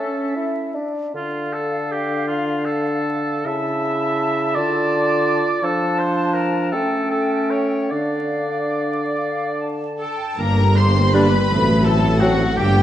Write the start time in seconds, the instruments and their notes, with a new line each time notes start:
Already playing: bassoon C#4, oboe A4
0.00 clarinet C#4, flute section E5
0.36 bassoon E4
0.75 bassoon D4
1.14 bassoon D3, clarinet D4, oboe F4, flute section F5
1.53 oboe A4
1.92 oboe G4
2.27 oboe F4
2.66 oboe A4
3.45 bassoon C#3, clarinet E4, oboe E5, flute section A5
4.55 bassoon D3, clarinet F4, oboe D5
5.63 bassoon F3, clarinet D4, oboe A4, flute section A5
5.99 oboe C5
6.34 oboe A#4
6.72 bassoon A3, clarinet C#4, oboe A4, flute section G5
7.11 oboe A4
7.50 oboe C#5
7.90 bassoon D3, clarinet D4, oboe D5, flute section F5
9.16 flute section F5
9.59 flute section A5
9.99 oboe A4, violin section A4 A5, flute section G5 A5
10.37 tuba G1, double bass section G1, cello section G2, trombone section D3 G3, viola section A#3 D4, french horn section A#3 G4, violin section A#4 A#5, oboe A#4, flute section A#5
10.59 viola section G3 A#3
10.76 viola section A#3 D4, oboe C5, violin section C5 C6, flute section C6
10.97 viola section G3 A#3
11.13 bassoon G3, viola section A#3 D4, clarinet D4, violin section B4 B5, oboe B4, flute section B5
11.32 viola section G3 A#3
11.49 double bass section A1, tuba A1, cello section A2, trombone section F#3 A3, viola section A3 C4, french horn section C4 F#4
11.69 viola section F#3 A3
11.84 viola section A3 C4, violin section A4 A5, oboe A4, flute section A5
12.03 viola section F#3 A3
12.20 bassoon F#3, viola section A3 C4, clarinet C4, violin section F#4 F#5, oboe F#4, flute section F#5
12.38 viola section F#3 A3
12.56 double bass section G1, tuba G1, cello section G2, trombone section D3 G3, viola section A#3 D4, french horn section D4 G4, violin section G4 G5, oboe G4, flute section G5
12.74 viola section G3 A#3